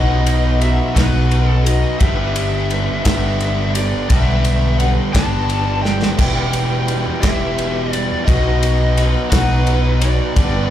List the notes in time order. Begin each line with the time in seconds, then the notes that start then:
Already playing: B1 B2 D#3 F#3 B3 D#4 F#4 B4 D#5
0.27 ride
0.61 F#3 B3 F#4 E5, ride
0.95 B1 B2 F#3 B3 D#4 F#4 B4, kick, snare, ride
1.31 ride
1.49 A4
1.65 B3 D#4 F#4 D#5, ride
2.00 G1 G2 D3 G3 B3 D4 G4 B4 E5, kick, ride
2.36 ride
2.70 G3 B3 D4 G4, ride
3.04 G1 D3 B3 D4 G4 E5, kick, snare, ride
3.08 G2 G3
3.40 ride
3.75 G3 B3 D4 G4 D5, ride
4.09 B1 G2 D3 G3 B3 D4 G4 E5, kick, ride
4.45 ride
4.78 G3 B3 F#5, ride
4.82 D4 G4
5.13 G1 G2 D3 G3 B3 D4 G4 A5, kick, snare, ride
5.50 ride
5.83 G3 B3 D4 G4 G5, snare
6.03 snare
6.16 E1 E2 B2 E3 G3 B3 E4 G4 B4, kick, crash, ride
6.53 ride
6.86 E3 G3 E4 G4, ride
7.21 E1 E2 B2 E3 G3 E4 G4 E5, kick, snare, ride
7.58 ride
7.91 E3 G3 E4 G4 D5, ride
8.25 B1 B2 F#3 B3 D#4 F#4 B4 D#5, kick, ride
8.29 F#4
8.63 ride
8.97 F#3 B3 D#4 F#4, ride
9.30 B1 B2 F#3 B3 D#4 F#4 B4, kick, snare, ride
9.67 ride
10.00 B3 D#4 F#4 D5, ride
10.35 G1 G2 D3 G3 B3 D4 G4 B4, kick, ride